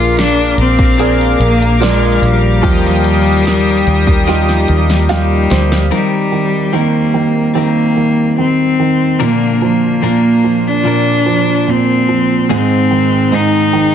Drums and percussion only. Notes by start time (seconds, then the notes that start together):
0.17 snare, closed hi-hat
0.58 closed hi-hat
0.79 kick
0.99 closed hi-hat
1.21 closed hi-hat
1.41 closed hi-hat
1.63 closed hi-hat
1.82 snare, closed hi-hat
2.23 closed hi-hat
2.64 kick, closed hi-hat
2.86 snare
3.04 closed hi-hat
3.46 snare, closed hi-hat
3.87 closed hi-hat
4.07 kick
4.28 snare, closed hi-hat
4.49 snare, closed hi-hat
4.68 closed hi-hat
4.89 snare, closed hi-hat
5.09 snare, closed hi-hat
5.50 snare, closed hi-hat
5.72 snare